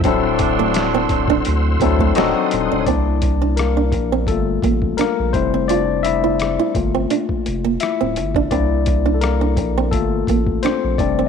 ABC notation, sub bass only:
X:1
M:4/4
L:1/16
Q:"Swing 16ths" 1/4=85
K:Gdor
V:1 name="Sub bass" clef=bass
D,,,6 D,,,2 D,,2 D,,2 D,,, z _E,,, E,,, | C,,6 B,,,2 G,,,2 A,,,2 z B,,, F,,,2- | F,,,6 G,,,2 z2 F,,,2 z D,,, G,,,2 | C,,6 B,,,2 G,,,2 A,,,2 z B,,, F,,,2 |]